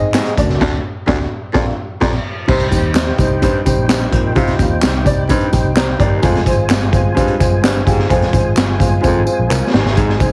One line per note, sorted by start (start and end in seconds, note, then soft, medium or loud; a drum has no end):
0.00 0.20 G#2 medium
0.13 0.33 G#2 medium
0.13 0.30 C4 medium
0.13 0.30 D#4 medium
0.13 0.30 G#4 medium
0.13 0.31 D#5 loud
0.13 snare loud
0.13 clap medium
0.13 closed hi-hat medium
0.13 tambourine medium
0.26 closed hi-hat medium
0.37 0.47 D2 medium
0.37 0.56 F#2 medium
0.37 0.59 A3 medium
0.37 0.59 D4 medium
0.37 0.60 F#4 medium
0.37 0.61 D5 medium
0.37 kick medium
0.37 closed hi-hat medium
0.37 tambourine soft
0.49 0.59 C#2 medium
0.49 snare soft
0.60 0.73 D2 loud
0.60 0.77 D2 loud
0.60 0.77 A3 medium
0.60 0.77 D4 medium
0.60 0.77 F#4 medium
0.60 0.78 D5 medium
0.60 kick loud
0.60 snare loud
0.60 crash medium
1.07 1.19 D2 medium
1.07 1.24 D2 loud
1.07 1.23 A3 medium
1.07 1.24 D4 medium
1.07 1.24 F#4 loud
1.07 1.24 D5 medium
1.07 kick loud
1.07 snare loud
1.54 1.71 A#1 loud
1.54 1.66 F2 medium
1.54 1.71 A#3 medium
1.54 1.71 D4 medium
1.54 1.72 F4 medium
1.54 1.71 D5 medium
1.54 kick medium
1.54 snare loud
2.01 2.18 A#1 medium
2.01 2.13 F2 medium
2.01 2.18 D5 medium
2.01 2.18 A#5 medium
2.01 kick medium
2.01 snare medium
2.01 crash medium
2.48 2.68 C2 loud
2.48 2.67 C3 medium
2.48 2.64 G3 loud
2.48 2.64 C4 medium
2.48 2.64 D#4 medium
2.48 6.20 D#4 medium
2.48 6.20 G4 medium
2.48 2.65 C5 loud
2.48 10.32 C5 medium
2.48 6.20 G5 medium
2.48 kick loud
2.48 crash medium
2.60 closed hi-hat soft
2.71 3.10 D#2 medium
2.71 2.87 G3 medium
2.71 2.88 C4 medium
2.71 2.88 D#4 medium
2.71 2.88 C5 medium
2.71 kick medium
2.71 closed hi-hat medium
2.71 tambourine soft
2.94 3.11 G3 medium
2.94 3.11 C4 medium
2.94 3.12 D#4 medium
2.94 3.12 C5 medium
2.94 snare loud
2.94 clap medium
2.94 closed hi-hat medium
2.94 tambourine medium
3.18 3.48 C2 medium
3.18 3.35 G3 medium
3.18 3.35 C4 medium
3.18 3.35 D#4 medium
3.18 3.36 C5 medium
3.18 kick medium
3.18 closed hi-hat medium
3.18 tambourine soft
3.42 3.61 G2 medium
3.42 3.58 G3 medium
3.42 3.58 C4 medium
3.42 3.58 D#4 medium
3.42 3.59 C5 loud
3.42 kick medium
3.42 closed hi-hat medium
3.42 tambourine soft
3.65 3.76 C2 medium
3.65 3.81 G3 medium
3.65 3.82 C4 medium
3.65 3.82 D#4 medium
3.65 3.82 C5 loud
3.65 kick medium
3.65 closed hi-hat medium
3.65 tambourine medium
3.77 4.06 A#1 medium
3.88 4.08 G2 medium
3.88 4.05 G3 medium
3.88 4.05 C4 medium
3.88 4.05 D#4 medium
3.88 4.05 C5 medium
3.88 snare loud
3.88 clap medium
3.88 closed hi-hat medium
3.88 tambourine loud
4.11 4.32 A#1 medium
4.11 4.31 A#2 medium
4.11 4.28 G3 medium
4.11 4.28 C4 medium
4.11 4.29 D#4 medium
4.11 4.29 C5 medium
4.11 kick loud
4.11 closed hi-hat medium
4.35 4.55 C2 loud
4.35 4.54 C3 medium
4.35 4.52 G3 loud
4.35 4.52 C4 medium
4.35 4.52 D#4 medium
4.35 4.52 F4 loud
4.35 kick loud
4.35 closed hi-hat medium
4.47 snare soft
4.47 closed hi-hat soft
4.59 4.79 D#2 medium
4.59 4.75 G3 medium
4.59 4.75 C4 medium
4.59 4.75 D#4 medium
4.59 4.76 F4 medium
4.59 kick medium
4.59 closed hi-hat medium
4.59 tambourine soft
4.82 5.02 C2 medium
4.82 4.98 G3 medium
4.82 4.99 C4 medium
4.82 4.99 D#4 medium
4.82 4.99 C5 medium
4.82 snare loud
4.82 clap medium
4.82 closed hi-hat medium
4.82 tambourine medium
5.04 5.35 C2 medium
5.04 5.21 G3 medium
5.04 5.22 C4 medium
5.04 5.22 D#4 medium
5.04 5.22 D5 medium
5.04 kick medium
5.04 closed hi-hat medium
5.04 tambourine medium
5.29 5.48 G2 medium
5.29 5.45 G3 loud
5.29 5.46 C4 medium
5.29 5.46 D#4 loud
5.29 5.46 C5 loud
5.29 kick medium
5.29 closed hi-hat medium
5.29 tambourine medium
5.40 closed hi-hat soft
5.52 5.63 A#1 loud
5.52 5.69 G3 medium
5.52 5.69 C4 medium
5.52 5.69 D#4 medium
5.52 5.69 C5 medium
5.52 5.75 G5 medium
5.52 kick medium
5.52 closed hi-hat medium
5.52 tambourine medium
5.65 5.94 C2 medium
5.75 5.92 G3 medium
5.75 5.92 C4 medium
5.75 5.92 D#4 medium
5.75 5.93 C5 medium
5.75 6.20 A#5 medium
5.75 snare loud
5.75 clap loud
5.75 closed hi-hat medium
5.75 tambourine medium
5.99 6.19 G1 medium
5.99 6.18 D#2 medium
5.99 6.15 G3 medium
5.99 6.16 C4 medium
5.99 6.16 D#4 medium
5.99 6.16 D5 medium
5.99 kick loud
5.99 closed hi-hat loud
6.22 6.42 F1 loud
6.22 6.42 F2 medium
6.22 6.39 G#3 loud
6.22 6.39 C4 medium
6.22 6.39 F4 loud
6.22 9.71 F4 medium
6.22 10.32 G#4 medium
6.22 6.40 C5 loud
6.22 9.71 G#5 medium
6.22 kick loud
6.22 closed hi-hat medium
6.22 tambourine soft
6.35 snare soft
6.35 closed hi-hat soft
6.45 6.66 G#1 medium
6.45 6.62 G#3 medium
6.45 6.62 C4 medium
6.45 6.63 F4 medium
6.45 6.63 C5 loud
6.45 kick medium
6.45 closed hi-hat medium
6.45 tambourine soft
6.69 6.89 G1 medium
6.69 6.85 G#3 medium
6.69 6.86 C4 medium
6.69 6.86 F4 medium
6.69 6.86 C5 medium
6.69 snare loud
6.69 clap loud
6.69 closed hi-hat medium
6.69 tambourine medium
6.91 7.22 G1 medium
6.91 7.08 G#3 medium
6.91 7.09 C4 medium
6.91 7.09 F4 medium
6.91 7.09 C5 loud
6.91 kick medium
6.91 closed hi-hat medium
6.91 tambourine soft
7.15 7.36 G2 medium
7.15 7.32 G#3 loud
7.15 7.32 C4 medium
7.15 7.32 F4 loud
7.15 7.33 C5 loud
7.15 kick medium
7.15 closed hi-hat medium
7.15 tambourine soft
7.28 closed hi-hat soft
7.39 7.50 F1 medium
7.39 7.55 G#3 medium
7.39 7.56 C4 medium
7.39 7.56 F4 medium
7.39 7.56 C5 medium
7.39 kick medium
7.39 closed hi-hat medium
7.39 tambourine medium
7.52 7.81 G1 medium
7.62 7.82 G2 medium
7.62 7.79 G#3 medium
7.62 7.79 C4 medium
7.62 7.79 F4 medium
7.62 7.80 C5 medium
7.62 snare loud
7.62 clap medium
7.62 closed hi-hat medium
7.62 tambourine medium
7.85 8.06 G1 medium
7.85 8.06 G#2 medium
7.85 8.02 G#3 medium
7.85 8.02 C4 medium
7.85 8.03 F4 medium
7.85 8.03 G4 medium
7.85 kick loud
7.85 closed hi-hat medium
7.85 tambourine soft
7.99 snare soft
8.09 8.30 F1 loud
8.09 8.29 F2 medium
8.09 8.26 G#3 loud
8.09 8.26 C4 loud
8.09 8.26 F4 medium
8.09 8.26 C5 loud
8.09 kick loud
8.09 closed hi-hat medium
8.09 tambourine soft
8.22 snare soft
8.22 closed hi-hat soft
8.32 8.53 G#1 medium
8.32 8.49 G#3 medium
8.32 8.49 C4 medium
8.32 8.50 F4 medium
8.32 8.50 C5 loud
8.32 kick medium
8.32 closed hi-hat medium
8.32 tambourine soft
8.55 8.76 G1 medium
8.55 8.72 G#3 medium
8.55 8.73 C4 medium
8.55 8.73 F4 medium
8.55 8.73 C5 medium
8.55 snare loud
8.55 clap loud
8.55 closed hi-hat medium
8.55 tambourine medium
8.78 9.00 G1 medium
8.78 8.95 G#3 medium
8.78 8.96 C4 medium
8.78 8.96 F4 medium
8.78 8.96 C5 medium
8.78 kick medium
8.78 closed hi-hat medium
8.78 tambourine medium
9.01 9.14 F1 medium
9.01 9.22 F2 medium
9.01 9.19 G#3 loud
9.01 9.19 C4 medium
9.01 9.19 F4 loud
9.01 9.19 C5 loud
9.01 kick medium
9.01 tambourine soft
9.16 9.25 G#1 medium
9.25 9.42 G#3 medium
9.25 9.42 C4 medium
9.25 9.42 F4 medium
9.25 9.43 C5 medium
9.25 tambourine medium
9.39 9.49 A#1 medium
9.48 9.60 C2 medium
9.48 9.65 G#3 medium
9.48 9.66 C4 medium
9.48 9.66 F4 medium
9.48 9.66 A#4 medium
9.48 clap medium
9.48 tambourine loud
9.72 9.84 G#1 medium
9.72 9.92 D#2 medium
9.72 10.10 G#3 medium
9.72 10.11 C4 medium
9.72 10.11 D#4 medium
9.72 10.32 D#4 medium
9.72 10.11 C5 medium
9.72 10.32 G#5 medium
9.72 snare loud
9.85 9.95 G#1 medium
9.85 snare medium
9.97 10.17 G#1 loud
9.97 10.16 G#2 medium
9.97 kick loud
9.97 closed hi-hat medium
9.97 tambourine soft
10.10 snare soft
10.19 10.32 C2 medium
10.19 10.32 G#3 medium
10.19 10.32 C4 medium
10.19 10.32 D#4 medium
10.19 10.32 C5 medium
10.19 kick medium
10.19 closed hi-hat medium
10.19 tambourine soft